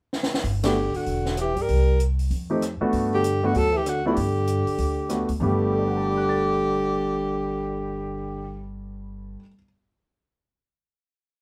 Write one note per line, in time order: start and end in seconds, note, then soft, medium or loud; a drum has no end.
0.13 snare medium
0.23 snare medium
0.34 snare medium
0.44 0.91 G1 medium
0.44 open hi-hat soft
0.63 0.95 D3 medium
0.63 0.74 A3 medium
0.63 0.74 B3 medium
0.63 0.74 D4 medium
0.63 0.75 F#4 medium
0.63 0.97 G4 medium
0.63 snare medium
0.63 ride medium
0.94 1.38 D3 medium
0.94 1.38 F#4 medium
0.94 muted upright bass stroke soft
0.94 open hi-hat soft
1.06 1.53 E1 medium
1.06 open hi-hat soft
1.26 snare soft
1.37 1.60 E3 medium
1.37 1.63 G4 medium
1.37 cross-stick medium
1.37 closed hi-hat soft
1.57 1.68 G2 medium
1.57 2.01 G3 medium
1.57 open hi-hat soft
1.62 2.02 A#4 medium
1.68 2.28 C2 medium
1.68 open hi-hat soft
2.00 closed hi-hat soft
2.19 open hi-hat soft
2.31 2.77 F2 medium
2.31 open hi-hat soft
2.50 2.61 A3 medium
2.50 2.61 C4 medium
2.50 2.61 D#4 medium
2.50 2.61 G4 medium
2.62 cross-stick medium
2.62 closed hi-hat soft
2.81 3.21 A3 medium
2.81 3.21 B3 medium
2.81 3.21 D4 medium
2.81 3.22 F#4 medium
2.81 muted upright bass stroke soft
2.93 3.52 G2 medium
2.93 open hi-hat soft
3.13 3.43 D3 medium
3.13 3.47 G4 medium
3.24 closed hi-hat soft
3.43 3.56 D3 medium
3.43 3.54 A3 medium
3.43 3.54 B3 medium
3.43 3.54 D4 medium
3.43 3.54 F#4 medium
3.43 3.58 F#4 medium
3.54 4.14 D2 medium
3.54 3.75 F#3 medium
3.54 3.78 A4 medium
3.54 open hi-hat soft
3.74 3.88 E3 medium
3.74 3.90 G4 medium
3.86 4.05 D3 medium
3.86 4.06 F#4 medium
3.86 cross-stick medium
3.86 closed hi-hat soft
4.05 5.25 D3 medium
4.05 4.16 A3 medium
4.05 4.16 B3 medium
4.05 4.16 D4 medium
4.05 4.16 E4 medium
4.05 5.26 G4 medium
4.17 4.63 G2 medium
4.17 open hi-hat soft
4.47 closed hi-hat soft
4.67 muted upright bass stroke soft
4.67 open hi-hat soft
4.78 5.25 D2 medium
4.78 open hi-hat soft
5.09 5.27 A3 soft
5.09 5.27 B3 soft
5.09 5.27 D4 soft
5.09 5.27 F#4 medium
5.09 cross-stick medium
5.09 closed hi-hat soft
5.29 5.40 D2 medium
5.29 open hi-hat soft
5.40 9.35 G1 medium
5.40 9.39 G2 medium
5.40 8.65 D3 medium
5.40 9.39 G3 medium
5.40 9.40 A3 medium
5.40 9.40 B3 medium
5.40 8.66 G4 medium
5.40 9.40 G4 medium
5.72 9.35 A4 soft
5.79 9.39 D5 soft
5.87 9.43 F#5 soft
5.97 9.48 A5 soft
6.07 9.53 D6 soft
6.17 9.58 F#6 soft
6.29 9.64 A6 soft